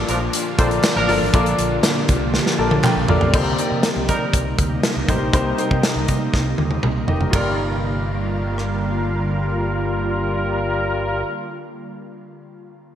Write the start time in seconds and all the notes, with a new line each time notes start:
Already playing: A#2 D3 F3 A#3 D4 F4 A4 A#4 D5
0.08 A#1 F3 D4 A#4, closed hi-hat
0.33 A#2 F3 A#3, closed hi-hat
0.58 A#1 C4 D4 F4 A4 A#4 C5 D5, kick, closed hi-hat
0.71 closed hi-hat
0.82 A#2 F3 A#3, snare, clap, closed hi-hat, tambourine
0.96 A1 F3 D4 A#4
1.08 G1 D4 F4 A4 A#4 D5, open hi-hat
1.22 A1
1.33 A#1 A#2 F3 A#3 D4 F4 G4 A4 A#4 D5, kick, closed hi-hat
1.46 closed hi-hat
1.58 A#1, closed hi-hat
1.83 snare, clap, closed hi-hat, tambourine
2.07 C2 F3 A#3, kick, closed hi-hat
2.32 A#2 F3 A#3, snare
2.46 snare
2.58 A#1 D4 F4 A4 A#4 D5 A5
2.71 high tom
2.83 A#2 F3 A#3 G5, clap, mid tom
2.96 A#1
3.08 A1 D4 F4 A4 A#4 D5, floor tom
3.18 A#1 F5, floor tom
3.33 C2 C3 G3 A#3 D#4 G4 A#4 C5, kick, crash
3.58 D#4 G4 A#4 D5, closed hi-hat
3.72 C3
3.83 snare, closed hi-hat
3.96 C2
4.09 C3 G3 D#4 A#4, kick, closed hi-hat
4.33 C2, kick, closed hi-hat
4.59 D2, kick, closed hi-hat
4.83 snare, closed hi-hat
4.97 C2
5.08 A1 D#4 G4 A#4 C5, kick, closed hi-hat
5.21 A#1
5.33 C2 C3 D#4 G4 A#4 C5, kick, closed hi-hat
5.58 D#4 G4 A#4 C5, closed hi-hat
5.71 C3, kick
5.83 snare, closed hi-hat
5.96 C2
6.08 C3, kick, closed hi-hat
6.34 C2, kick, snare
6.58 D#2, high tom
6.71 high tom
6.83 C2, mid tom
7.07 F1 D#4 G4 A#4 D#5, floor tom
7.21 floor tom
7.31 G1 G2 D3 G3 A#3 F4 G4 A#4, kick, ride
7.36 D5
8.58 cross-stick